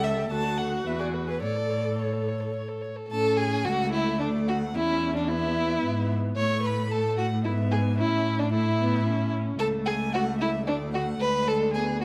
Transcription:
0.00 0.30 C#2 medium
0.00 0.33 A4 medium
0.00 0.19 A4 medium
0.00 0.31 E5 medium
0.17 0.29 G4 medium
0.29 0.85 D2 medium
0.29 1.42 F#4 medium
0.29 0.45 A4 medium
0.29 0.60 A5 loud
0.44 0.59 F#4 medium
0.58 0.74 A4 medium
0.58 0.88 F#5 medium
0.72 0.85 F#4 medium
0.86 1.44 E2 medium
0.86 1.01 B4 medium
0.86 0.99 E5 medium
0.99 1.15 G#4 medium
0.99 1.08 D5 medium
1.13 1.29 B4 medium
1.27 1.40 G#4 soft
1.27 1.42 B4 medium
1.41 2.91 A2 medium
1.41 2.81 A4 medium
1.41 1.57 C#5 medium
1.41 2.01 D5 medium
1.56 1.71 A4 soft
1.70 1.85 C#5 soft
1.84 1.98 A4 soft
1.98 2.14 C#5 medium
1.98 2.84 C#5 medium
2.13 2.29 A4 soft
2.27 2.41 C#5 soft
2.40 2.54 A4 soft
2.54 2.70 C#5 soft
2.68 2.83 A4 soft
2.81 2.97 C#5 medium
2.96 3.08 A4 medium
3.08 3.67 A2 medium
3.08 3.67 C#4 medium
3.08 3.38 A4 loud
3.08 3.37 A5 medium
3.36 3.66 G#4 medium
3.36 3.68 G#5 medium
3.64 4.21 C#2 medium
3.64 4.74 A3 medium
3.64 3.92 F#4 loud
3.64 3.93 F#5 medium
3.92 4.19 E4 medium
3.92 4.23 E5 medium
4.19 4.76 D2 medium
4.19 4.27 D4 medium
4.19 4.50 D5 medium
4.48 4.56 F#4 medium
4.48 4.77 F#5 medium
4.75 5.83 E2 medium
4.75 5.31 C#4 medium
4.75 5.15 E4 medium
4.75 5.16 E5 medium
5.16 5.30 D4 medium
5.16 5.22 D5 medium
5.28 6.38 B3 medium
5.28 6.10 E4 medium
5.28 6.10 E5 medium
5.83 6.36 G#2 medium
6.36 7.46 A2 medium
6.36 6.91 A3 medium
6.36 6.62 C#5 loud
6.36 6.68 C#6 medium
6.63 6.90 B4 medium
6.63 6.93 B5 medium
6.90 7.47 A3 medium
6.90 7.17 A4 medium
6.90 7.17 A5 medium
7.17 7.25 F#4 medium
7.17 7.44 F#5 medium
7.44 8.00 G#2 medium
7.44 8.00 B3 medium
7.44 7.52 E4 medium
7.44 7.74 E5 medium
7.71 7.79 G#4 medium
7.71 7.98 G#5 medium
7.98 9.58 A2 medium
7.98 8.52 C#4 medium
7.98 8.41 E4 medium
7.98 8.40 E5 medium
8.39 8.52 D4 medium
8.39 8.52 D5 medium
8.52 8.60 A3 medium
8.52 9.31 E4 medium
8.52 9.31 E5 medium
8.79 9.05 B3 medium
9.06 9.60 C#4 medium
9.59 10.68 C#2 medium
9.59 10.66 A3 medium
9.59 9.67 A4 loud
9.59 9.67 A5 medium
9.86 9.94 G#4 loud
9.86 10.14 G#5 medium
10.13 10.22 F#4 medium
10.13 10.38 F#5 medium
10.39 10.49 E4 medium
10.39 10.66 E5 medium
10.66 11.19 D2 medium
10.66 11.23 A3 medium
10.66 10.75 D4 medium
10.66 10.93 D5 medium
10.94 11.02 F#4 medium
10.94 11.23 F#5 medium
11.20 12.05 D2 medium
11.20 11.76 G#3 medium
11.20 11.49 B4 loud
11.20 11.48 B5 medium
11.47 11.73 A4 medium
11.47 11.56 A5 medium
11.73 12.05 B3 medium
11.73 12.00 G#4 medium
11.73 11.83 G#5 medium
12.01 12.05 F#4 medium

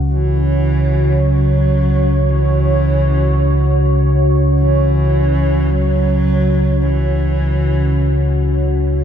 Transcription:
0.00 9.04 C#2 medium
0.00 9.04 C#3 medium
0.00 9.04 C#4 medium
0.00 9.04 F#4 medium
0.00 8.62 C#5 medium
0.12 1.21 E3 medium
1.19 2.32 F#3 medium
2.30 4.00 E3 medium
4.59 5.73 E3 medium
5.71 6.84 F#3 medium
6.82 8.48 E3 medium

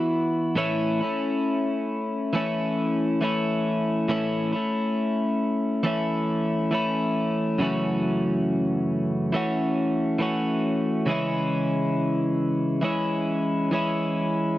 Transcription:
0.00 0.56 E3 medium
0.00 0.56 B3 soft
0.00 0.57 E4 medium
0.00 0.57 F#4 medium
0.56 1.00 A2 medium
0.56 1.01 E3 medium
0.56 1.01 A3 medium
0.56 1.01 C#4 medium
0.56 0.99 E4 medium
1.00 2.34 A3 soft
1.00 2.35 C#4 soft
1.00 2.36 E4 soft
2.33 3.21 E3 medium
2.33 3.22 A3 medium
2.33 3.23 C#4 medium
2.33 3.24 E4 medium
3.21 4.09 E3 medium
3.21 4.09 A3 medium
3.21 4.10 C#4 medium
3.21 4.11 E4 medium
4.08 4.53 A2 medium
4.08 4.53 E3 medium
4.08 4.54 A3 medium
4.08 4.53 C#4 medium
4.08 4.51 E4 medium
4.53 5.84 A3 soft
4.53 5.85 C#4 soft
4.53 5.86 E4 soft
5.83 6.71 E3 medium
5.83 6.72 A3 medium
5.83 6.73 C#4 medium
5.83 6.74 E4 medium
6.71 7.61 E3 medium
6.71 7.62 A3 medium
6.71 7.62 C#4 medium
6.71 7.62 E4 medium
7.59 9.33 F#2 medium
7.59 9.34 C#3 medium
7.59 9.32 E3 medium
7.59 9.33 A3 medium
7.63 9.35 C#4 medium
7.63 9.35 F#4 medium
9.32 10.18 E3 medium
9.32 10.19 A3 medium
9.32 10.21 C#4 medium
9.32 10.21 F#4 medium
10.19 11.07 E3 medium
10.19 11.07 A3 medium
10.19 11.10 C#4 medium
10.19 11.08 F#4 medium
11.06 12.83 C#3 medium
11.06 12.81 E3 medium
11.06 12.82 G#3 medium
11.06 12.84 C#4 medium
11.11 12.84 E4 medium
12.81 13.71 E3 medium
12.81 13.71 G#3 medium
12.81 13.73 C#4 medium
12.81 13.74 E4 medium
13.71 14.58 E3 medium
13.71 14.58 G#3 medium
13.71 14.58 C#4 medium
13.71 14.58 E4 medium

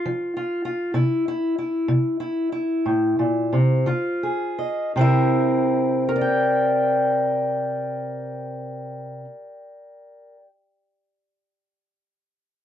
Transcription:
0.00 0.35 F4 soft
0.00 3.84 C5 medium
0.06 0.59 F3 medium
0.37 0.64 F4 soft
0.65 0.91 F4 soft
0.94 1.49 C3 medium
0.94 1.25 E4 medium
1.28 1.57 E4 soft
1.58 2.19 E4 soft
1.88 2.45 C3 medium
2.20 2.51 E4 soft
2.52 3.82 E4 soft
2.86 3.18 A2 medium
3.19 3.52 A#2 medium
3.53 3.86 C3 medium
3.86 4.50 C#3 medium
3.86 4.91 F4 soft
4.23 4.91 G#4 soft
4.59 4.91 D#5 soft
4.96 9.23 C3 medium
4.96 9.24 C4 medium
4.96 6.08 E4 medium
5.01 6.09 A#4 medium
5.01 6.00 E5 medium
6.09 10.36 A#4 medium
6.16 10.43 D5 medium
6.21 10.48 G5 medium

